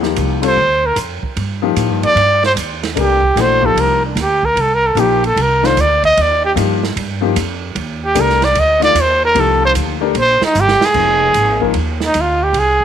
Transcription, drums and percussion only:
0.03 snare soft
0.16 hi-hat pedal soft
0.16 ride medium
0.43 ride medium
0.96 hi-hat pedal medium
0.96 ride medium
1.23 kick medium
1.37 ride medium
1.76 hi-hat pedal medium
1.76 ride medium
2.03 ride soft
2.17 ride medium
2.43 snare soft
2.57 hi-hat pedal medium
2.57 ride medium
2.83 snare medium
2.83 ride soft
2.97 ride medium
3.23 kick medium
3.37 snare soft
3.37 hi-hat pedal soft
3.37 ride medium
3.63 kick medium
3.77 ride medium
4.17 snare soft
4.17 hi-hat pedal medium
4.17 ride medium
4.43 kick medium
4.57 ride medium
4.97 hi-hat pedal soft
4.97 ride medium
5.24 ride soft
5.37 ride medium
5.64 snare medium
5.77 hi-hat pedal medium
5.77 ride medium
6.03 kick medium
6.03 ride soft
6.17 ride medium
6.57 hi-hat pedal medium
6.57 ride medium
6.83 snare medium
6.97 ride medium
7.36 hi-hat pedal medium
7.36 ride medium
7.76 ride medium
8.16 hi-hat pedal medium
8.16 ride medium
8.29 snare soft
8.42 snare medium
8.42 ride soft
8.55 ride medium
8.82 snare soft
8.82 ride medium
8.96 hi-hat pedal medium
8.96 ride medium
9.36 ride medium
9.75 hi-hat pedal medium
9.75 ride medium
10.15 ride medium
10.42 snare medium
10.55 hi-hat pedal medium
10.68 snare medium
10.81 snare medium
10.94 kick medium
10.94 crash medium
11.34 hi-hat pedal medium
11.34 ride medium
11.61 kick soft
11.74 ride medium
12.00 snare medium
12.14 hi-hat pedal medium
12.14 ride medium
12.54 ride medium
12.81 kick soft

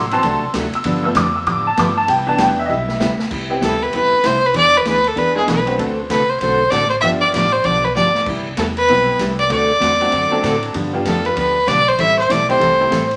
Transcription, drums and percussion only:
0.11 ride medium
0.23 kick soft
0.23 ride medium
0.54 kick soft
0.54 snare medium
0.54 hi-hat pedal medium
0.54 ride medium
0.73 ride medium
0.84 kick soft
0.84 ride medium
1.15 kick soft
1.15 snare medium
1.15 hi-hat pedal medium
1.15 ride medium
1.46 kick soft
1.46 ride medium
1.77 kick soft
1.77 snare medium
1.77 hi-hat pedal medium
1.77 ride medium
2.08 kick soft
2.08 ride medium
2.38 kick soft
2.38 snare medium
2.38 hi-hat pedal medium
2.38 ride medium
2.88 snare medium
3.00 snare loud
3.00 hi-hat pedal medium
3.19 snare medium
3.31 kick medium
3.31 crash medium
3.62 kick soft
3.62 snare medium
3.62 hi-hat pedal medium
3.62 ride medium
3.93 kick soft
3.93 ride medium
4.24 kick soft
4.24 snare medium
4.24 hi-hat pedal medium
4.24 ride medium
4.54 kick soft
4.54 ride medium
4.85 kick soft
4.85 snare medium
4.85 hi-hat pedal medium
4.85 ride medium
5.04 ride soft
5.17 kick soft
5.17 ride medium
5.48 kick soft
5.48 snare medium
5.48 hi-hat pedal medium
5.48 ride medium
5.67 ride medium
5.79 kick soft
5.79 ride medium
6.10 kick soft
6.10 snare medium
6.10 hi-hat pedal medium
6.10 ride medium
6.41 kick soft
6.41 ride medium
6.72 kick soft
6.72 snare medium
6.72 hi-hat pedal medium
6.72 ride medium
7.03 kick soft
7.03 ride medium
7.34 kick soft
7.34 snare medium
7.34 hi-hat pedal medium
7.34 ride medium
7.64 kick soft
7.64 ride medium
7.96 snare soft
7.96 hi-hat pedal medium
8.15 snare medium
8.26 kick medium
8.26 crash medium
8.57 kick soft
8.57 snare medium
8.57 hi-hat pedal medium
8.57 ride medium
8.77 ride soft
8.88 kick soft
8.88 ride medium
9.19 kick soft
9.19 snare medium
9.19 hi-hat pedal medium
9.19 ride medium
9.39 ride soft
9.50 kick soft
9.50 ride medium
9.81 kick soft
9.81 snare medium
9.81 hi-hat pedal medium
9.81 ride medium
10.01 ride medium
10.12 kick soft
10.12 ride medium
10.43 kick soft
10.43 snare medium
10.43 hi-hat pedal medium
10.43 ride medium
10.63 ride soft
10.74 kick soft
10.74 ride medium
11.05 kick soft
11.05 snare medium
11.05 hi-hat pedal medium
11.05 ride medium
11.25 ride soft
11.36 kick soft
11.36 ride medium
11.67 kick soft
11.67 snare medium
11.67 hi-hat pedal medium
11.67 ride medium
11.98 kick soft
11.98 ride medium
12.30 kick soft
12.30 snare medium
12.30 hi-hat pedal medium
12.30 ride medium
12.49 ride medium
12.61 kick soft
12.61 ride medium
12.92 kick soft
12.92 snare medium
12.92 hi-hat pedal medium
12.92 ride medium
13.11 ride soft

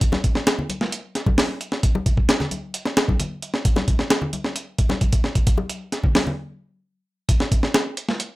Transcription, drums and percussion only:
0.01 kick loud
0.01 closed hi-hat medium
0.12 snare soft
0.12 high bongo medium
0.12 high conga medium
0.24 kick medium
0.24 closed hi-hat medium
0.35 snare medium
0.47 snare loud
0.47 closed hi-hat medium
0.59 low conga medium
0.69 closed hi-hat medium
0.69 high conga medium
0.81 snare soft
0.92 closed hi-hat medium
1.15 snare soft
1.15 closed hi-hat medium
1.26 kick loud
1.26 high bongo soft
1.26 high conga medium
1.38 snare loud
1.38 open hi-hat medium
1.61 closed hi-hat medium
1.72 snare soft
1.83 kick loud
1.83 closed hi-hat medium
1.95 high bongo medium
1.95 high conga medium
2.06 kick loud
2.06 closed hi-hat medium
2.17 kick medium
2.29 snare loud
2.29 closed hi-hat medium
2.40 snare soft
2.40 low conga medium
2.51 closed hi-hat medium
2.51 high conga medium
2.74 closed hi-hat medium
2.85 snare soft
2.85 high bongo medium
2.97 snare loud
2.97 closed hi-hat medium
3.08 kick loud
3.08 high conga medium
3.20 closed hi-hat medium
3.20 low conga medium
3.42 closed hi-hat medium
3.54 snare medium
3.65 kick loud
3.65 closed hi-hat medium
3.76 snare soft
3.76 high bongo medium
3.76 high conga medium
3.88 kick medium
3.88 closed hi-hat medium
3.99 snare medium
4.10 snare loud
4.10 closed hi-hat medium
4.22 low conga medium
4.33 closed hi-hat medium
4.33 high conga medium
4.44 snare soft
4.56 closed hi-hat medium
4.78 kick loud
4.78 closed hi-hat medium
4.89 snare soft
4.89 high bongo soft
4.89 high conga medium
5.01 kick medium
5.01 closed hi-hat medium
5.12 kick loud
5.12 closed hi-hat medium
5.24 snare soft
5.35 kick medium
5.35 closed hi-hat medium
5.47 kick loud
5.47 closed hi-hat medium
5.57 high bongo medium
5.57 high conga medium
5.70 closed hi-hat medium
5.92 snare soft
5.92 closed hi-hat medium
6.03 kick medium
6.03 low conga medium
6.15 snare loud
6.15 open hi-hat medium
6.15 high conga medium
6.27 low conga medium
7.29 kick loud
7.29 closed hi-hat medium
7.40 snare soft
7.52 kick loud
7.52 closed hi-hat medium
7.63 snare medium
7.74 snare loud
7.74 closed hi-hat medium
7.97 closed hi-hat medium
8.09 snare soft
8.20 closed hi-hat medium

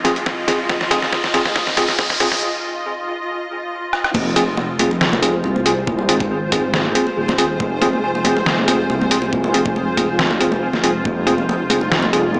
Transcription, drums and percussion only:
0.05 snare medium
0.05 closed hi-hat medium
0.16 closed hi-hat soft
0.26 kick loud
0.26 snare medium
0.48 snare loud
0.48 closed hi-hat medium
0.69 kick loud
0.69 snare medium
0.81 snare medium
0.91 snare medium
0.91 closed hi-hat medium
1.02 snare medium
1.13 kick loud
1.13 snare medium
1.24 snare medium
1.34 snare loud
1.34 closed hi-hat medium
1.45 snare medium
1.56 kick loud
1.56 snare medium
1.67 snare medium
1.77 snare loud
1.77 closed hi-hat medium
1.89 snare medium
1.89 closed hi-hat soft
1.99 kick loud
1.99 snare loud
2.10 snare medium
2.20 snare loud
2.20 closed hi-hat medium
2.32 snare medium
3.93 cross-stick medium
4.04 cross-stick medium
4.14 kick loud
4.14 crash loud
4.14 high conga loud
4.36 closed hi-hat medium
4.36 muted conga soft
4.48 high conga medium
4.57 muted conga medium
4.79 closed hi-hat medium
4.79 high conga medium
4.91 muted conga soft
5.01 snare loud
5.12 muted conga medium
5.12 high conga medium
5.23 closed hi-hat medium
5.44 muted conga medium
5.56 high conga medium
5.66 closed hi-hat medium
5.66 muted conga medium
5.87 kick loud
5.87 high conga medium
5.99 muted conga medium
6.09 closed hi-hat medium
6.20 kick loud
6.20 muted conga medium
6.20 high conga medium
6.52 kick medium
6.52 closed hi-hat medium
6.52 muted conga medium
6.52 high conga loud
6.74 snare loud
6.74 muted conga medium
6.85 high conga medium
6.95 closed hi-hat medium
7.07 muted conga soft
7.28 snare soft
7.28 muted conga medium
7.28 high conga loud
7.38 closed hi-hat medium
7.60 kick loud
7.60 muted conga soft
7.60 high conga medium
7.82 closed hi-hat medium
7.82 muted conga medium
7.93 high conga medium
8.15 muted conga medium
8.24 closed hi-hat medium
8.24 high conga loud
8.37 muted conga medium
8.46 snare loud
8.58 high conga medium
8.68 closed hi-hat medium
8.68 muted conga medium
8.90 muted conga medium
9.01 high conga medium
9.11 closed hi-hat medium
9.22 muted conga medium
9.33 kick loud
9.33 high conga medium
9.44 muted conga medium
9.54 closed hi-hat medium
9.65 kick loud
9.65 high conga medium
9.76 muted conga soft
9.97 kick medium
9.97 closed hi-hat medium
9.97 muted conga medium
9.97 high conga medium
10.19 snare loud
10.30 muted conga soft
10.30 high conga medium
10.41 closed hi-hat medium
10.52 muted conga medium
10.73 snare soft
10.73 high conga medium
10.84 closed hi-hat medium
10.84 muted conga soft
11.05 kick loud
11.05 high conga medium
11.27 closed hi-hat medium
11.27 muted conga soft
11.38 high conga medium
11.49 muted conga medium
11.70 closed hi-hat medium
11.70 high conga medium
11.81 muted conga medium
11.92 snare loud
12.02 muted conga medium
12.02 high conga medium
12.13 closed hi-hat medium
12.34 muted conga medium

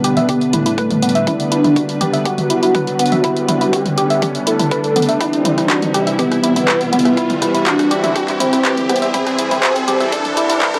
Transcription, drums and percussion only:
0.04 closed hi-hat medium
0.17 closed hi-hat soft
0.17 mid tom medium
0.29 kick loud
0.29 closed hi-hat medium
0.41 closed hi-hat soft
0.53 closed hi-hat loud
0.53 mid tom medium
0.66 closed hi-hat medium
0.78 kick loud
0.78 closed hi-hat soft
0.91 closed hi-hat soft
0.91 mid tom medium
1.02 closed hi-hat medium
1.09 closed hi-hat medium
1.15 closed hi-hat soft
1.27 kick loud
1.27 closed hi-hat medium
1.27 mid tom medium
1.40 closed hi-hat soft
1.52 closed hi-hat loud
1.64 closed hi-hat soft
1.64 mid tom medium
1.76 kick loud
1.76 closed hi-hat medium
1.89 closed hi-hat soft
2.01 closed hi-hat loud
2.01 mid tom medium
2.14 closed hi-hat soft
2.25 kick loud
2.25 closed hi-hat medium
2.38 closed hi-hat soft
2.38 mid tom medium
2.50 closed hi-hat loud
2.63 closed hi-hat medium
2.75 kick loud
2.75 closed hi-hat soft
2.75 mid tom medium
2.87 closed hi-hat soft
2.99 closed hi-hat loud
3.06 closed hi-hat medium
3.12 closed hi-hat soft
3.12 mid tom medium
3.24 kick loud
3.24 closed hi-hat medium
3.37 closed hi-hat soft
3.49 closed hi-hat loud
3.49 mid tom medium
3.61 closed hi-hat soft
3.73 kick loud
3.73 closed hi-hat medium
3.86 closed hi-hat soft
3.86 mid tom medium
3.98 closed hi-hat medium
4.10 closed hi-hat soft
4.22 kick loud
4.22 closed hi-hat medium
4.22 mid tom medium
4.35 closed hi-hat soft
4.47 closed hi-hat loud
4.59 closed hi-hat medium
4.59 mid tom medium
4.71 kick loud
4.71 closed hi-hat soft
4.84 closed hi-hat soft
4.96 closed hi-hat medium
4.96 mid tom medium
5.02 closed hi-hat medium
5.09 closed hi-hat soft
5.21 kick loud
5.21 cross-stick medium
5.21 closed hi-hat medium
5.33 closed hi-hat soft
5.45 closed hi-hat loud
5.45 mid tom medium
5.58 cross-stick medium
5.58 closed hi-hat soft
5.70 kick loud
5.70 clap loud
5.70 closed hi-hat medium
5.82 closed hi-hat soft
5.82 mid tom medium
5.94 cross-stick medium
5.94 closed hi-hat medium
6.07 closed hi-hat soft
6.19 kick loud
6.19 closed hi-hat medium
6.19 mid tom medium
6.32 cross-stick medium
6.32 closed hi-hat soft
6.44 closed hi-hat loud
6.56 closed hi-hat medium
6.56 mid tom medium
6.68 kick loud
6.68 cross-stick medium
6.68 clap loud
6.68 closed hi-hat soft
6.81 closed hi-hat soft
6.93 closed hi-hat medium
6.93 mid tom medium
6.99 closed hi-hat medium
7.05 cross-stick medium
7.05 closed hi-hat soft
7.17 kick loud
7.17 closed hi-hat medium
7.30 closed hi-hat soft
7.30 mid tom medium
7.42 cross-stick medium
7.42 closed hi-hat loud
7.55 closed hi-hat soft
7.66 kick loud
7.66 clap loud
7.66 closed hi-hat medium
7.66 mid tom medium
7.79 cross-stick medium
7.79 closed hi-hat soft
7.91 closed hi-hat medium
8.04 closed hi-hat soft
8.04 mid tom medium
8.16 kick loud
8.16 cross-stick medium
8.16 closed hi-hat medium
8.28 clap soft
8.28 closed hi-hat soft
8.40 closed hi-hat loud
8.40 mid tom loud
8.53 cross-stick medium
8.53 closed hi-hat medium
8.65 kick loud
8.65 clap loud
8.65 closed hi-hat soft
8.78 closed hi-hat soft
8.78 mid tom medium
8.89 cross-stick medium
8.89 closed hi-hat medium
8.96 closed hi-hat medium
9.02 closed hi-hat soft
9.14 kick loud
9.14 closed hi-hat medium
9.14 mid tom medium
9.27 cross-stick medium
9.27 closed hi-hat soft
9.39 closed hi-hat loud
9.51 closed hi-hat soft
9.51 mid tom medium
9.63 kick loud
9.63 cross-stick medium
9.63 clap loud
9.63 closed hi-hat medium
9.76 closed hi-hat soft
9.88 closed hi-hat medium
9.88 mid tom loud
10.00 cross-stick medium
10.00 closed hi-hat soft
10.12 kick loud
10.12 closed hi-hat medium
10.25 closed hi-hat soft
10.25 mid tom medium
10.37 cross-stick medium
10.37 closed hi-hat loud
10.50 closed hi-hat medium
10.62 kick loud
10.62 clap loud
10.62 closed hi-hat soft
10.62 mid tom loud
10.74 cross-stick medium
10.74 closed hi-hat soft

